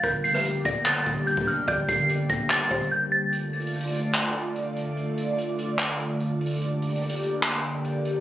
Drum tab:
HH |x-----------x-----------x-----------x-----------x-----------x-----------x-----------x-----------|x-----------x-----------x-----------x-----------x-----------x-----x-----------------------------|x-----------x---x---x---x---x---x---x-----------x-----------x-----------x-----------x-----------|x-----------x-----------x-----------x-----------x-----------x-----------x-----------x--x--x--x--|
CP |------------------------------------------------x-----------------------------------------------|------------------------------------------------x-----------------------------------------------|------------------------------------------------x-----------------------------------------------|------------------------------------------------x-----------------------------------------------|
SD |------------------r-----------------------------------------------------------------------------|------------------------------------------------------------------------------------------------|------------------------------------------------------------------------------------------------|------------------------------------------------------------------------------------------------|
BD |o-----------------------------------o-----------------------o-----------------o-----------------|o-----------o-----------------------o-----------------------o-----------------------------------|------------------------------------------------------------------------------------------------|------------------------------------------------------------------------------------------------|

HH |x-----------x---x---x---x---x---x---x-----------x-----------x-----------x-----------x-----------|
CP |------------------------------------------------x-----------------------------------------------|
SD |------------------------------------------------------------------------------------------------|
BD |------------------------------------------------------------------------------------------------|